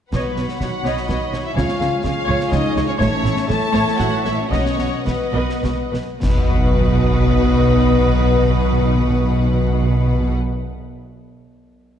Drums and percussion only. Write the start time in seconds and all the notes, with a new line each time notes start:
0.13 concert bass drum, snare, crash
0.36 snare
0.49 snare
0.61 concert bass drum, snare
0.85 snare
0.97 snare
1.09 concert bass drum, snare
1.33 snare
1.57 concert bass drum, snare
1.68 snare
1.81 snare
2.04 concert bass drum, snare
2.40 snare
2.52 concert bass drum, snare
2.76 snare
3.01 concert bass drum, snare
3.25 snare
3.37 snare
3.50 concert bass drum, snare
3.74 snare
3.88 snare
3.99 concert bass drum, snare
4.25 snare
4.52 concert bass drum, snare
4.66 snare
4.79 snare
5.07 concert bass drum, snare
5.49 snare
5.64 concert bass drum, snare
5.94 snare
6.23 concert bass drum, snare, crash